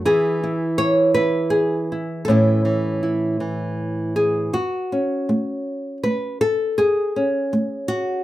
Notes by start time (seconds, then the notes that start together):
0.05 E3 E4 G#4
0.43 E4
0.78 C#5
1.14 E4 B4
1.50 G#4
1.92 E4
2.25 A2 A4
2.30 E3 C#4 E4
2.65 E3
3.03 E4
3.40 E3
4.16 G#4
4.53 F#2 F#4
4.92 C#4
5.29 A3
6.03 A3 B4
6.41 A4
6.78 F#2 G#4
7.16 C#4
7.53 A3
7.88 F#4